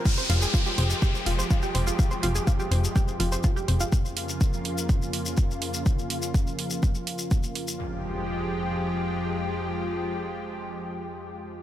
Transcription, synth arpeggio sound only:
X:1
M:4/4
L:1/16
Q:1/4=124
K:Fm
V:1 name="Synth arpeggio sound"
F c F A F G c z G z F c F G c F | F c F A F G c z G z F c F G c F | z16 | z16 |
z16 | z16 |]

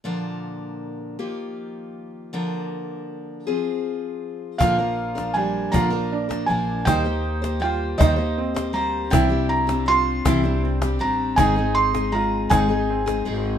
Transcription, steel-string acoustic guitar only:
X:1
M:6/8
L:1/16
Q:3/8=53
K:Bbmix
V:1 name="Steel-string acoustic guitar"
[B,,D,F,B,DB]6 [E,F,B,FG]6 | [D,F,B,DB]6 [F,CFA]6 | [B,,D,F,B,DB] [F,B,DB]2 [F,B,DB] [F,B,DB]2 [B,,D,F,B,DB] [F,B,DB]2 [F,B,DB] [F,B,DB]2 | [E,G,B,Gc] [B,Gc]2 [B,Gc] [G,B,Gc]2 [E,G,B,Gc] [B,Gc]2 [B,Gc] [G,B,Gc]2 |
[C,=E,G,CDG] [G,CDG]2 [G,CDG] [G,CDG]2 [C,E,G,CDG] [G,CDG]2 [G,CDG] [G,CDG]2 | [A,,E,A,CEA] [A,CEA]2 [A,CEA] [A,CEA]2 [A,,E,A,CEA] [A,CEA]2 [A,CEA] [A,CEA]2 |]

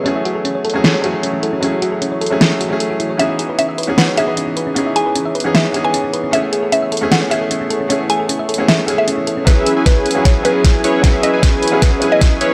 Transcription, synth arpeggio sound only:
X:1
M:4/4
L:1/16
Q:1/4=153
K:E
V:1 name="Synth arpeggio sound"
C e F A C c A C A c F A C C A C | C e F A C c A C A c F F A F E c | C e G B C e B C B c G B C C B C | C e G B C e B C B c G B C C B C |
C e G A C e A C A c G A C C A C | C e G A C e A C A c G A C C A C | z16 | z16 |]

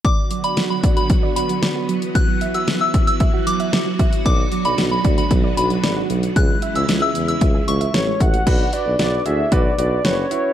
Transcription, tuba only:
X:1
M:4/4
L:1/16
Q:1/4=114
K:Bdor
V:1 name="Tuba" clef=bass
z16 | z16 | B,,,2 z B,,, B,,,2 D,,2 B,,,2 B,,,2 G,,,2 B,,,2 | C,,2 z C,, C,,2 E,,2 C,,2 C,,2 A,,,2 A,,,2 |
B,,,2 z B,,, B,,,2 D,,2 B,,,2 B,,,2 F,,,2 z2 |]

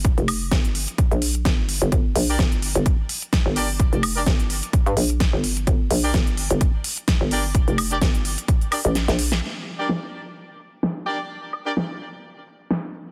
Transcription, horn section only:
X:1
M:4/4
L:1/16
Q:"Swing 16ths" 1/4=128
K:Gm
V:1 name="Horn section"
z16 | z3 [DGBd] z8 z2 [DGBd] z | z3 [DGBd] z12 | z3 [DGBd] z8 z2 [DGBd] z |
z3 [DGBd] z6 [DGBd] z4 z | z3 [DGBd] z8 z2 [DGBd] z | z3 [DGBd] z12 |]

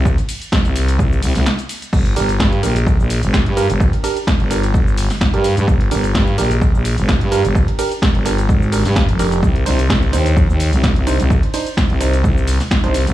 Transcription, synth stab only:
X:1
M:4/4
L:1/16
Q:"Swing 16ths" 1/4=128
K:Gphr
V:1 name="Synth stab"
z16 | z2 [DGB] z3 [DGB] z6 z [DGB] z | z2 [DGB] z3 [DGB] z6 [DGB] z2 | z2 [DGB] z3 [DGB] z6 z [DGB] z |
z2 [DGB] z3 [DGB] z3 [DGB] z3 [DGB]2 | z2 [DEc] z3 [DEc] z6 z [DEc] z | z2 [DEc] z3 [DEc] z6 [DEc] z2 |]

